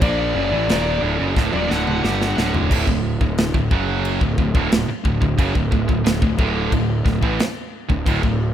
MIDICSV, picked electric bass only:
0, 0, Header, 1, 3, 480
1, 0, Start_track
1, 0, Tempo, 669643
1, 18, Time_signature, 4, 2, 24, 8
1, 6120, End_track
2, 0, Start_track
2, 0, Title_t, "Picked electric bass"
2, 0, Program_c, 0, 34
2, 12, Note_on_c, 0, 34, 93
2, 239, Note_off_c, 0, 34, 0
2, 251, Note_on_c, 0, 30, 101
2, 366, Note_off_c, 0, 30, 0
2, 374, Note_on_c, 0, 33, 104
2, 488, Note_off_c, 0, 33, 0
2, 492, Note_on_c, 0, 27, 94
2, 719, Note_off_c, 0, 27, 0
2, 733, Note_on_c, 0, 26, 105
2, 848, Note_off_c, 0, 26, 0
2, 859, Note_on_c, 0, 30, 93
2, 971, Note_off_c, 0, 30, 0
2, 978, Note_on_c, 0, 26, 96
2, 1091, Note_off_c, 0, 26, 0
2, 1101, Note_on_c, 0, 27, 89
2, 1212, Note_off_c, 0, 27, 0
2, 1225, Note_on_c, 0, 26, 93
2, 1446, Note_off_c, 0, 26, 0
2, 1464, Note_on_c, 0, 31, 96
2, 1686, Note_off_c, 0, 31, 0
2, 1703, Note_on_c, 0, 26, 91
2, 1925, Note_off_c, 0, 26, 0
2, 1943, Note_on_c, 0, 26, 106
2, 2054, Note_off_c, 0, 26, 0
2, 2059, Note_on_c, 0, 26, 69
2, 2284, Note_off_c, 0, 26, 0
2, 2300, Note_on_c, 0, 26, 85
2, 2524, Note_off_c, 0, 26, 0
2, 2542, Note_on_c, 0, 26, 81
2, 2654, Note_off_c, 0, 26, 0
2, 2662, Note_on_c, 0, 30, 98
2, 2997, Note_off_c, 0, 30, 0
2, 3017, Note_on_c, 0, 26, 73
2, 3131, Note_off_c, 0, 26, 0
2, 3138, Note_on_c, 0, 26, 76
2, 3252, Note_off_c, 0, 26, 0
2, 3258, Note_on_c, 0, 26, 106
2, 3372, Note_off_c, 0, 26, 0
2, 3376, Note_on_c, 0, 26, 81
2, 3490, Note_off_c, 0, 26, 0
2, 3621, Note_on_c, 0, 26, 70
2, 3733, Note_off_c, 0, 26, 0
2, 3738, Note_on_c, 0, 26, 78
2, 3852, Note_off_c, 0, 26, 0
2, 3860, Note_on_c, 0, 30, 101
2, 3972, Note_off_c, 0, 30, 0
2, 3982, Note_on_c, 0, 26, 70
2, 4094, Note_off_c, 0, 26, 0
2, 4101, Note_on_c, 0, 26, 86
2, 4213, Note_off_c, 0, 26, 0
2, 4221, Note_on_c, 0, 26, 90
2, 4326, Note_off_c, 0, 26, 0
2, 4331, Note_on_c, 0, 26, 88
2, 4447, Note_off_c, 0, 26, 0
2, 4457, Note_on_c, 0, 26, 75
2, 4571, Note_off_c, 0, 26, 0
2, 4578, Note_on_c, 0, 26, 94
2, 4803, Note_off_c, 0, 26, 0
2, 4818, Note_on_c, 0, 26, 81
2, 5042, Note_off_c, 0, 26, 0
2, 5056, Note_on_c, 0, 26, 82
2, 5170, Note_off_c, 0, 26, 0
2, 5180, Note_on_c, 0, 33, 110
2, 5292, Note_off_c, 0, 33, 0
2, 5660, Note_on_c, 0, 26, 75
2, 5772, Note_off_c, 0, 26, 0
2, 5782, Note_on_c, 0, 26, 92
2, 5893, Note_off_c, 0, 26, 0
2, 5902, Note_on_c, 0, 26, 74
2, 6120, Note_off_c, 0, 26, 0
2, 6120, End_track
3, 0, Start_track
3, 0, Title_t, "Muted picked electric bass strokes"
3, 3495, Note_on_c, 9, 29, 46
3, 3567, Note_off_c, 9, 29, 0
3, 6120, End_track
0, 0, End_of_file